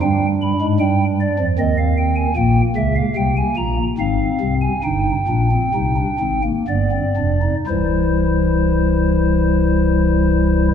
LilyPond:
<<
  \new Staff \with { instrumentName = "Pipe organ" } { \time 3/4 \key g \phrygian \tempo 4 = 69 << { g''8 b''8 g''8 d''8 ees''16 f''16 g''16 aes''16 | g''8 e''16 f''16 g''16 aes''16 bes''8 f''8. aes''16 | g''2 d''4 | <e g c''>2. | } \\ { d'2 c'4 | bes2 c'4 | ees'8 d'16 c'16 ees'16 d'16 c'16 bes16 b16 c'16 d'16 ees'16 | e'2. | } >> }
  \new Staff \with { instrumentName = "Pipe organ" } { \clef bass \time 3/4 \key g \phrygian <g, g>8. <aes, aes>16 <g, g>8. <f, f>16 <ees, ees>4 | <bes,, bes,>8 <des, des>8 <c, c>8 <bes,, bes,>8 <aes,, aes,>8 <c, c>8 | <g,, g,>8 <bes,, bes,>8 <c, c>8 <aes,, aes,>8 <g,, g,>8 <f,, f,>8 | <c,, c,>2. | }
>>